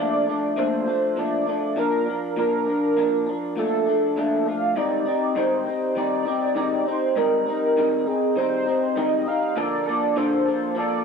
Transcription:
Already playing: clean electric guitar A#2 F3 A3
0.00 clean electric guitar D4, soft synth lead D5
0.27 clean electric guitar F3 A3 D4
0.56 clean electric guitar A#2 F3 A3 D4, soft synth lead C5
0.86 clean electric guitar F3 A3 D4
1.16 clean electric guitar A#2 F3 A3 D4, soft synth lead D5
1.46 clean electric guitar F3 A3 D4
1.76 clean electric guitar A#2 F3 D4, soft synth lead A#4
2.06 clean electric guitar F3 D4
2.36 clean electric guitar A#2 F3 D4, soft synth lead A#4
2.66 clean electric guitar F3 D4
2.97 clean electric guitar A#2 F3 D4
3.26 clean electric guitar F3 D4
3.56 clean electric guitar A#2 F3 A3 D4, soft synth lead A4
3.86 clean electric guitar F3 A3 D4
4.16 clean electric guitar A#2 F3 A3 D4
4.46 clean electric guitar F3 A3 D4, soft synth lead F5
4.76 clean electric guitar G#2 D#3 G3 C4 D#4, soft synth lead D5
5.05 clean electric guitar G3 C4 D#4
5.35 clean electric guitar G#2 D#3 G3 C4 D#4, soft synth lead C5
5.65 clean electric guitar G3 C4 D#4
5.95 clean electric guitar D#3 G3 C4 D#4, soft synth lead D5
6.25 clean electric guitar G3 C4 D#4
6.55 clean electric guitar G#2 D#3 G3 C4 D#4
6.85 clean electric guitar G3 C4 D#4, soft synth lead C5
7.16 clean electric guitar G#2 D#3 G3 C4 D#4, soft synth lead A#4
7.46 clean electric guitar G3 C4 D#4
7.76 clean electric guitar G#2 D#3 G3 C4 D#4
8.06 clean electric guitar C4 D#4, soft synth lead G#4
8.36 clean electric guitar D#3 G3 C4 D#4, soft synth lead C5
8.66 clean electric guitar G3 C4 D#4
8.96 clean electric guitar G#2 D#3 G3 C4 D#4, soft synth lead D#5
9.26 clean electric guitar G3 C4 D#4, soft synth lead F5
9.56 clean electric guitar A#2 D3 F3 A#3 D4 A4, soft synth lead D5
9.86 clean electric guitar F3 A#3 D4 A4
10.16 clean electric guitar A#2 D3 F3 A#3 D4 A4, soft synth lead C5
10.46 clean electric guitar F3 A#3 D4 A4
10.75 clean electric guitar F3 A#3 D4 A4, soft synth lead D5

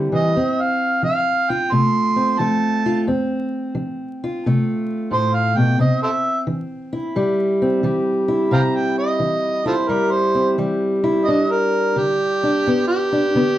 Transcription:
Already playing: steel-string acoustic guitar D3 G3 C4 E4
0.12 steel-string acoustic guitar E3, harmonica D#5
0.36 steel-string acoustic guitar F2 C4
0.61 harmonica F5
1.03 steel-string acoustic guitar F3, harmonica F5
1.50 steel-string acoustic guitar F4, harmonica G5
1.72 steel-string acoustic guitar C3 A3, harmonica C6
2.16 steel-string acoustic guitar C4
2.39 steel-string acoustic guitar F3 A3, harmonica A5
2.86 steel-string acoustic guitar F4
3.07 steel-string acoustic guitar F2 C4
3.75 steel-string acoustic guitar F3
4.24 steel-string acoustic guitar F4
4.46 steel-string acoustic guitar C3 A3
5.11 steel-string acoustic guitar A2, harmonica C5
5.34 harmonica F5
5.57 steel-string acoustic guitar B2, harmonica G5
5.79 steel-string acoustic guitar C3 C4, harmonica D#5
6.03 harmonica A4 C5 E5
6.47 steel-string acoustic guitar E3
6.93 steel-string acoustic guitar E4
7.16 steel-string acoustic guitar G2 G3
7.62 steel-string acoustic guitar C4
7.83 steel-string acoustic guitar E3 G3
8.28 steel-string acoustic guitar E4
8.51 steel-string acoustic guitar C3 C4, harmonica F5 G5 A#5
8.76 harmonica G5
8.98 harmonica D#5
9.20 steel-string acoustic guitar E3
9.66 steel-string acoustic guitar E4, harmonica F4 A4 C5
9.88 steel-string acoustic guitar G2 G3, harmonica A#4
10.11 harmonica C5
10.35 steel-string acoustic guitar C4
10.58 steel-string acoustic guitar E3 G3
11.04 steel-string acoustic guitar E4
11.25 steel-string acoustic guitar G2 D4, harmonica D#5
11.51 harmonica A#4
11.96 steel-string acoustic guitar D3, harmonica G4
12.43 steel-string acoustic guitar D4
12.67 steel-string acoustic guitar G2 B3
12.88 harmonica G4
13.12 steel-string acoustic guitar D4
13.35 steel-string acoustic guitar D3 B3

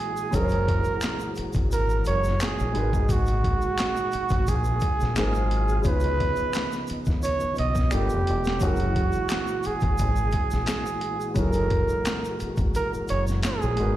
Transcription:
Already playing: tonewheel organ A#2 E3 G#3 F#4, upright piano F#3 C#4 E4 G#4 A#4, muted trumpet G#4
0.17 shaker
0.31 fingered electric bass F#1, upright piano F#3 C#4 E4, kick, closed hi-hat, shaker
0.35 upright piano G#4 C5, muted trumpet A#4
0.45 upright piano C#5
0.49 closed hi-hat, shaker
0.68 kick, closed hi-hat
0.84 muted fingered electric bass stroke, shaker
1.01 finger snap, snare, clap, closed hi-hat, shaker
1.20 shaker
1.36 muted fingered electric bass stroke, closed hi-hat, shaker
1.53 fingered electric bass G#1, kick, closed hi-hat, shaker
1.72 muted trumpet A#4, closed hi-hat, shaker
1.89 shaker
2.05 fingered electric bass F#1, muted trumpet C#5, closed hi-hat, shaker
2.24 snare, shaker
2.40 muted trumpet G#4, finger snap, snare, clap, closed hi-hat, shaker
2.59 fingered electric bass A#1, shaker
2.72 tonewheel organ D#3, upright piano G#3 D#4 F#4, closed hi-hat
2.77 fingered electric bass G#1, upright piano A#4 B4
2.93 kick, shaker
3.09 muted trumpet F#4, kick, closed hi-hat, shaker
3.26 closed hi-hat, shaker
3.44 kick, closed hi-hat
3.61 muted fingered electric bass stroke, shaker
3.78 finger snap, snare, clap, closed hi-hat, shaker
3.96 shaker
4.12 muted fingered electric bass stroke, closed hi-hat, shaker
4.29 fingered electric bass G#1, kick, closed hi-hat, shaker
4.47 fingered electric bass A#1, muted trumpet G#4, kick, closed hi-hat, shaker
4.64 shaker
4.80 kick, closed hi-hat, shaker
5.00 fingered electric bass A#1, snare, shaker
5.16 fingered electric bass G#1, tonewheel organ C3 F#3 F5, upright piano G#3 D#4 F4 F#4 A#4 C5, muted trumpet G#4, finger snap, snare, clap, closed hi-hat, shaker
5.34 shaker
5.51 closed hi-hat
5.68 shaker
5.82 upright piano C#3 C#4 D#4, tonewheel organ C#3 F3 D#4, kick, closed hi-hat, shaker
5.86 fingered electric bass C#2, tonewheel organ B3, upright piano F4 B4, muted trumpet B4
6.00 closed hi-hat, shaker
6.20 kick, closed hi-hat
6.36 muted fingered electric bass stroke, shaker
6.53 finger snap, snare, clap, closed hi-hat, shaker
6.72 snare, shaker
6.87 muted fingered electric bass stroke, closed hi-hat, shaker
7.05 fingered electric bass D#2, kick, shaker
7.10 snare
7.23 muted trumpet C#5, closed hi-hat, shaker
7.40 shaker
7.44 muted fingered electric bass stroke
7.56 fingered electric bass B1, muted trumpet D#5, closed hi-hat, shaker
7.75 kick, snare, shaker
7.91 fingered electric bass G1, upright piano G3 D4 F4 A4 A#4, tonewheel organ A3 G4, muted trumpet G4, finger snap, closed hi-hat, shaker
8.01 upright piano B4
8.09 fingered electric bass F1, shaker
8.27 fingered electric bass E1, closed hi-hat
8.44 snare, shaker
8.59 fingered electric bass F#1, tonewheel organ A#2 E3 G#3 F#4, upright piano F#3 C#4 E4, muted trumpet F#4, kick, closed hi-hat, shaker
8.64 upright piano G#4 A#4
8.76 closed hi-hat, shaker
8.96 kick, closed hi-hat
9.12 shaker
9.17 muted fingered electric bass stroke
9.29 finger snap, snare, clap, closed hi-hat, shaker
9.47 shaker
9.63 muted trumpet G#4, muted fingered electric bass stroke, closed hi-hat, shaker
9.80 fingered electric bass G#1, kick, closed hi-hat, shaker
9.98 fingered electric bass G#1, kick, closed hi-hat, shaker
10.16 shaker
10.31 kick, closed hi-hat, shaker
10.51 fingered electric bass A#1, snare, shaker
10.66 muted trumpet G#4, finger snap, snare, clap, closed hi-hat, shaker
10.86 shaker
11.01 closed hi-hat
11.21 shaker
11.34 fingered electric bass F#1, upright piano F#3 C#4 E4, kick, closed hi-hat, shaker
11.39 upright piano G#4 A4, muted trumpet A#4
11.48 upright piano A#4
11.53 closed hi-hat, shaker
11.70 kick, closed hi-hat
11.89 muted fingered electric bass stroke, shaker
12.05 finger snap, snare, clap, closed hi-hat, shaker
12.25 shaker
12.40 muted fingered electric bass stroke, closed hi-hat, shaker
12.57 fingered electric bass G#1, kick, closed hi-hat, shaker
12.75 muted trumpet A#4, closed hi-hat, shaker
12.94 muted fingered electric bass stroke, shaker
13.08 fingered electric bass F#1, muted trumpet C#5, closed hi-hat, shaker
13.27 snare, shaker
13.43 muted trumpet G#4, finger snap, snare, clap, closed hi-hat, shaker
13.62 fingered electric bass A#1, shaker
13.75 tonewheel organ B2, upright piano G#3 D#4 F#4, closed hi-hat
13.80 fingered electric bass G#1, upright piano A#4 B4

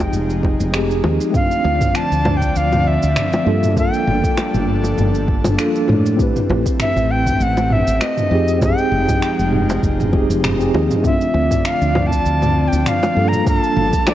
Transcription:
Already playing: analog synth pad F3 G#3 D#4, tine electric piano C4 D#4 G4 G#4, flute G5
0.00 high bongo
0.13 fretless electric bass F1, shaker
0.30 shaker
0.43 kick, high bongo
0.60 fretless electric bass F1, shaker
0.72 tine electric piano C4 D#4 G4 G#4, finger snap, shaker
0.91 shaker
1.04 fretless electric bass D#2, high bongo
1.21 shaker
1.30 analog synth pad D3 F3 C4 D5, tine electric piano A3 C4, kick
1.34 tine electric piano D4, flute F5, mid tom, shaker
1.51 shaker
1.64 fretless electric bass D2, high bongo
1.81 kick, mid tom, shaker
1.95 flute A5, finger snap, shaker
2.12 fretless electric bass D2, shaker
2.25 mid tom, high bongo
2.37 flute G5
2.42 kick, shaker
2.56 fretless electric bass D2, flute F5, shaker
2.72 mid tom, high bongo, shaker
2.87 flute E5
3.02 fretless electric bass D2, shaker
3.16 finger snap, mid tom, shaker
3.33 high bongo, shaker
3.45 fretless electric bass G2, analog synth pad G3 D4 A4, tine electric piano A#3 D4 F4 A4
3.63 mid tom, shaker
3.73 tine electric piano A#3 D4, kick, high bongo, shaker
3.78 tine electric piano F4 A4, flute G5
3.93 shaker
4.07 fretless electric bass G1, mid tom
4.24 kick, shaker
4.37 finger snap, high bongo, shaker
4.54 fretless electric bass G1, mid tom, shaker
4.83 high bongo, shaker
4.98 fretless electric bass G1, mid tom, shaker
5.15 shaker
5.28 kick
5.44 fretless electric bass G1, mid tom, high bongo, shaker
5.57 tine electric piano A#3 D4 F4 A4, finger snap, shaker
5.75 shaker
5.88 fretless electric bass A2, mid tom, high bongo
6.06 shaker
6.16 analog synth pad A3 C4, tine electric piano C4 E4, kick, shaker
6.21 tine electric piano G4 B4
6.36 mid tom, shaker
6.49 fretless electric bass A1, high bongo
6.66 kick, shaker
6.80 flute E5, finger snap, mid tom, shaker
6.96 fretless electric bass A1, high bongo, shaker
7.11 flute G5
7.27 kick, mid tom, shaker
7.40 fretless electric bass A1, flute F#5, shaker
7.57 high bongo, shaker
7.70 flute E5, mid tom
7.87 fretless electric bass A1, shaker
8.01 flute D#5, finger snap, high bongo, shaker
8.17 mid tom, shaker
8.30 fretless electric bass F2, analog synth pad F3 G#3 D#4, tine electric piano C4 D#4 G4 G#4
8.48 shaker
8.58 tine electric piano C4 D#4, kick, mid tom, high bongo, shaker
8.63 tine electric piano G4 G#4, flute G5
8.78 shaker
8.92 fretless electric bass F1
9.08 kick, mid tom, high bongo, shaker
9.22 finger snap, shaker
9.39 fretless electric bass F1, shaker
9.53 mid tom
9.69 high bongo, shaker
9.83 fretless electric bass F1, kick, shaker
10.00 mid tom, shaker
10.12 tine electric piano C4 D#4 G4 G#4, kick, high bongo
10.30 fretless electric bass F1, shaker
10.44 finger snap, mid tom, shaker
10.59 tine electric piano C4 D#4 G4 G#4, shaker
10.74 fretless electric bass D#2, high bongo
10.91 mid tom, shaker
11.01 analog synth pad D3 F3 C4 D5, tine electric piano A3 C4, kick, mid tom, shaker
11.05 tine electric piano D4 F4, flute E5
11.21 shaker
11.34 fretless electric bass D2, high bongo
11.51 kick, mid tom, shaker
11.65 flute F5, finger snap, shaker
11.81 fretless electric bass D2, shaker
11.95 mid tom, high bongo
12.07 flute A5
12.11 kick, shaker
12.25 fretless electric bass D2, shaker
12.42 mid tom, high bongo, shaker
12.68 flute G5
12.73 fretless electric bass D2, shaker
12.86 flute F5, finger snap, mid tom, shaker
13.03 high bongo, shaker
13.14 fretless electric bass G2, analog synth pad G3 D4 A4, tine electric piano A#3 D4 F4 A4
13.28 flute A#5
13.33 mid tom, shaker
13.43 tine electric piano A#3 D4, kick, high bongo, shaker
13.47 tine electric piano F4 A4, flute A5
13.63 shaker
13.77 fretless electric bass G1, mid tom
13.93 kick, shaker
14.07 flute D5, finger snap, high bongo, shaker

